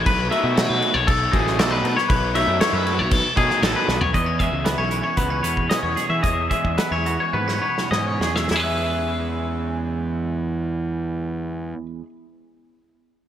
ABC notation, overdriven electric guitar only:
X:1
M:4/4
L:1/8
Q:1/4=111
K:E
V:1 name="Overdriven electric guitar" clef=bass
z [B,,F,A,D] [B,,F,A,D] z2 [B,,F,A,D] [B,,F,A,D] z | z [B,,F,A,D] [B,,F,A,D] z2 [B,,F,A,D] [B,,F,A,D] z | z8 | z8 |
z8 | z8 |]